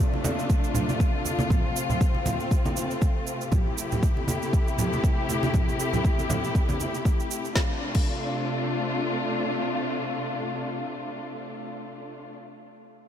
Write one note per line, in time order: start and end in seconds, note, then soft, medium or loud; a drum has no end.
0.00 3.48 C3 medium
0.00 3.48 A3 medium
0.00 1.49 D4 medium
0.00 3.49 F4 medium
0.00 cabasa soft
0.14 high conga medium
0.24 high conga loud
0.24 cabasa medium
0.39 cabasa soft
0.50 kick loud
0.50 cabasa medium
0.64 cabasa soft
0.74 low conga loud
0.74 cabasa medium
0.89 high conga medium
0.89 cabasa soft
1.00 kick loud
1.00 cabasa medium
1.25 high conga medium
1.25 cabasa medium
1.39 high conga medium
1.39 cabasa soft
1.50 3.50 C4 medium
1.50 kick loud
1.50 low conga medium
1.50 cabasa soft
1.76 cabasa medium
1.90 low conga medium
1.90 cabasa soft
2.01 kick loud
2.01 cabasa soft
2.15 high conga medium
2.26 high conga medium
2.26 low conga medium
2.26 cabasa medium
2.40 cabasa soft
2.51 kick loud
2.51 cabasa soft
2.65 high conga medium
2.65 cabasa soft
2.77 high conga medium
2.77 cabasa medium
2.91 cabasa soft
3.02 kick loud
3.02 cabasa soft
3.27 cabasa medium
3.41 cabasa soft
3.52 7.52 C3 medium
3.52 7.52 A3 medium
3.52 7.52 E4 medium
3.52 7.52 G4 medium
3.52 kick loud
3.52 low conga medium
3.52 cabasa soft
3.78 cabasa medium
3.92 low conga medium
3.92 cabasa soft
4.03 kick loud
4.03 cabasa soft
4.17 high conga medium
4.28 high conga medium
4.28 cabasa medium
4.42 cabasa soft
4.53 kick loud
4.53 cabasa soft
4.68 cabasa soft
4.79 low conga loud
4.79 cabasa medium
4.93 high conga medium
4.93 cabasa soft
5.04 kick loud
5.04 cabasa soft
5.29 high conga medium
5.29 cabasa medium
5.43 high conga medium
5.43 cabasa soft
5.54 kick loud
5.54 low conga loud
5.54 cabasa soft
5.69 cabasa soft
5.80 cabasa medium
5.93 low conga medium
5.93 cabasa soft
6.05 kick loud
6.05 cabasa soft
6.19 high conga medium
6.19 cabasa soft
6.30 high conga loud
6.30 low conga medium
6.30 cabasa medium
6.44 cabasa soft
6.55 kick loud
6.55 cabasa soft
6.69 high conga loud
6.69 cabasa soft
6.80 high conga medium
6.80 cabasa medium
6.95 cabasa soft
7.05 kick loud
7.05 cabasa soft
7.20 cabasa soft
7.31 cabasa medium
7.45 cabasa soft
7.56 12.35 C3 medium
7.56 12.35 A3 medium
7.56 12.35 D4 medium
7.56 12.35 F4 medium
7.56 kick loud
7.56 snare medium
7.95 kick loud
7.95 crash medium